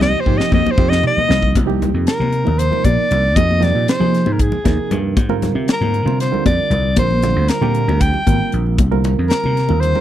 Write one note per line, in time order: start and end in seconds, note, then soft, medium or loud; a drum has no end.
0.00 0.12 C2 medium
0.00 0.20 C3 medium
0.00 0.20 F3 medium
0.00 1.55 F3 medium
0.00 0.20 A#3 medium
0.00 0.21 D#4 medium
0.00 1.52 D#4 medium
0.00 0.21 G4 medium
0.00 1.54 G4 medium
0.00 0.22 D#5 loud
0.00 snare medium
0.00 low conga medium
0.15 muted slap bass stroke soft
0.20 0.39 C5 medium
0.26 0.38 G#2 medium
0.26 0.72 C3 medium
0.26 0.72 F3 medium
0.26 0.72 A#3 medium
0.26 0.72 D#4 medium
0.26 0.72 G4 medium
0.26 kick medium
0.26 low conga soft
0.38 0.53 D#5 medium
0.38 snare medium
0.38 low conga soft
0.52 0.64 F2 medium
0.52 0.72 D#5 medium
0.52 kick medium
0.52 high conga medium
0.66 muted slap bass stroke soft
0.66 muted conga medium
0.66 low conga medium
0.71 0.90 C5 loud
0.78 1.01 F2 medium
0.78 1.23 C3 medium
0.78 1.24 F3 medium
0.78 1.24 A#3 medium
0.78 1.24 D#4 medium
0.78 1.24 G4 medium
0.78 kick loud
0.89 1.05 D#5 medium
0.89 snare medium
0.89 low conga soft
1.03 1.56 D#5 loud
1.03 mid tom medium
1.03 low conga soft
1.17 muted slap bass stroke soft
1.17 high conga medium
1.17 low conga medium
1.28 1.53 C2 medium
1.28 1.55 C3 medium
1.28 1.55 F3 medium
1.28 1.55 A#3 medium
1.28 1.55 D#4 medium
1.28 1.55 F4 medium
1.28 snare loud
1.28 low conga soft
1.42 kick medium
1.42 low conga soft
1.55 1.90 C2 medium
1.55 kick medium
1.55 closed hi-hat medium
1.55 muted conga medium
1.66 2.36 C3 medium
1.66 2.36 F3 medium
1.66 2.36 A#3 medium
1.66 2.36 D#4 medium
1.66 2.36 G4 medium
1.66 high conga medium
1.82 closed hi-hat medium
1.82 low conga medium
1.94 2.06 F2 medium
2.07 2.60 A#4 medium
2.07 snare medium
2.07 closed hi-hat medium
2.07 low conga soft
2.20 2.43 C3 medium
2.20 high conga medium
2.20 low conga medium
2.32 closed hi-hat medium
2.44 2.70 D#2 medium
2.44 2.68 C3 medium
2.44 2.68 F3 medium
2.44 2.68 A#3 medium
2.44 2.68 D#4 medium
2.44 2.69 A#4 medium
2.44 muted conga medium
2.59 2.86 C5 medium
2.59 closed hi-hat medium
2.59 low conga soft
2.71 3.29 C3 medium
2.71 3.28 F3 medium
2.71 3.29 A#3 medium
2.71 3.29 D#4 medium
2.71 3.29 A#4 medium
2.71 low conga medium
2.84 2.96 A#1 medium
2.84 3.37 D5 medium
2.84 kick medium
2.84 closed hi-hat medium
2.84 high conga medium
3.11 3.36 C2 medium
3.11 closed hi-hat medium
3.11 low conga medium
3.36 3.71 F2 medium
3.36 3.59 C3 medium
3.36 3.59 F3 medium
3.36 3.59 A#3 medium
3.36 3.59 D#4 medium
3.36 3.59 G#4 medium
3.36 3.65 D#5 loud
3.36 kick loud
3.36 closed hi-hat medium
3.36 muted conga medium
3.51 high conga medium
3.60 3.96 C3 medium
3.60 3.96 F3 medium
3.60 3.96 A#3 medium
3.60 3.96 D#4 medium
3.60 3.96 G4 medium
3.60 3.88 D5 medium
3.60 snare soft
3.60 closed hi-hat medium
3.60 low conga medium
3.75 3.86 A#2 medium
3.88 4.34 C5 medium
3.88 snare loud
3.88 closed hi-hat medium
3.88 low conga soft
4.00 4.57 C3 medium
4.00 4.57 F3 medium
4.00 4.24 F3 medium
4.00 4.58 A#3 medium
4.00 4.58 D#4 medium
4.00 4.58 G#4 medium
4.00 high conga medium
4.00 low conga medium
4.14 snare soft
4.14 closed hi-hat medium
4.26 4.50 G#2 medium
4.26 muted conga medium
4.32 4.42 A#4 medium
4.39 4.98 G#4 medium
4.39 kick loud
4.39 closed hi-hat medium
4.39 low conga soft
4.52 low conga medium
4.64 4.77 D#2 medium
4.64 5.16 C3 medium
4.64 5.17 F3 medium
4.64 5.17 A#3 medium
4.64 5.17 D#4 medium
4.64 5.17 A#4 medium
4.64 kick medium
4.64 snare soft
4.64 closed hi-hat medium
4.64 high conga medium
4.91 5.17 G2 loud
4.91 closed hi-hat medium
4.91 low conga loud
5.17 5.52 G#2 medium
5.17 kick loud
5.17 closed hi-hat medium
5.17 muted conga medium
5.29 5.98 D3 medium
5.29 5.98 G3 medium
5.29 5.98 C4 medium
5.29 5.98 F4 medium
5.29 5.98 A#4 loud
5.29 high conga medium
5.42 snare soft
5.42 closed hi-hat medium
5.42 low conga medium
5.55 5.67 C3 medium
5.68 snare loud
5.68 closed hi-hat medium
5.68 low conga soft
5.72 6.19 A#4 medium
5.81 6.04 G#2 medium
5.81 high conga medium
5.81 low conga medium
5.94 closed hi-hat soft
6.05 6.30 C3 medium
6.05 6.30 D3 medium
6.05 6.30 G3 medium
6.05 6.30 C4 medium
6.05 6.30 F4 medium
6.05 6.30 C5 medium
6.05 muted conga medium
6.20 6.45 C5 medium
6.20 snare soft
6.20 closed hi-hat medium
6.20 low conga soft
6.32 6.90 D3 medium
6.32 6.90 G3 medium
6.32 6.90 C4 medium
6.32 6.90 F4 medium
6.32 6.90 A#4 medium
6.32 low conga medium
6.46 6.58 F2 medium
6.46 6.94 D5 medium
6.46 kick medium
6.46 closed hi-hat medium
6.46 high conga loud
6.70 6.97 C2 medium
6.70 closed hi-hat medium
6.70 low conga medium
6.96 7.32 A#1 medium
6.96 7.20 D3 medium
6.96 7.20 G3 medium
6.96 7.20 C4 medium
6.96 7.20 F4 medium
6.96 7.20 A#4 medium
6.96 7.50 C5 medium
6.96 kick loud
6.96 closed hi-hat medium
6.96 muted conga medium
6.96 low conga soft
7.11 high conga medium
7.11 low conga soft
7.22 7.58 D3 medium
7.22 7.58 G3 medium
7.22 7.58 C4 medium
7.22 7.58 F4 medium
7.22 7.58 C5 medium
7.22 snare soft
7.22 closed hi-hat medium
7.22 low conga medium
7.36 7.48 D2 medium
7.48 8.03 A#4 medium
7.48 snare medium
7.48 closed hi-hat medium
7.48 low conga soft
7.61 7.85 A#2 medium
7.61 8.19 D3 medium
7.61 8.20 G3 medium
7.61 8.19 C4 medium
7.61 8.20 F4 medium
7.61 8.20 G4 medium
7.61 high conga medium
7.61 low conga medium
7.75 closed hi-hat medium
7.88 8.11 D2 medium
7.88 muted conga medium
8.01 8.60 G5 medium
8.01 kick medium
8.01 closed hi-hat medium
8.14 low conga medium
8.26 8.39 G#1 medium
8.26 8.79 D3 medium
8.26 8.79 G3 medium
8.26 8.79 C4 medium
8.26 8.79 F4 medium
8.26 8.79 A#4 medium
8.26 kick medium
8.26 closed hi-hat medium
8.26 high conga medium
8.26 low conga soft
8.52 8.79 A#1 medium
8.52 closed hi-hat medium
8.66 low conga soft
8.78 9.14 C2 medium
8.78 kick loud
8.78 closed hi-hat medium
8.78 muted conga medium
8.92 9.61 D3 medium
8.92 9.60 G3 medium
8.92 9.61 C4 medium
8.92 9.60 F4 medium
8.92 9.60 A#4 loud
8.92 high conga medium
9.04 closed hi-hat medium
9.04 low conga medium
9.19 9.30 F2 medium
9.29 9.81 A#4 medium
9.29 snare loud
9.29 closed hi-hat medium
9.44 9.68 C3 medium
9.44 high conga medium
9.44 low conga medium
9.57 snare soft
9.57 closed hi-hat medium
9.69 9.93 D#2 medium
9.69 9.92 D3 medium
9.69 9.92 G3 medium
9.69 9.92 C4 medium
9.69 9.93 F4 medium
9.69 9.93 A#4 medium
9.69 muted conga medium
9.80 10.01 C5 loud
9.80 closed hi-hat medium
9.94 10.01 D3 medium
9.94 10.01 G3 medium
9.94 10.01 C4 medium
9.94 10.01 F4 medium
9.94 10.01 A#4 medium
9.94 low conga medium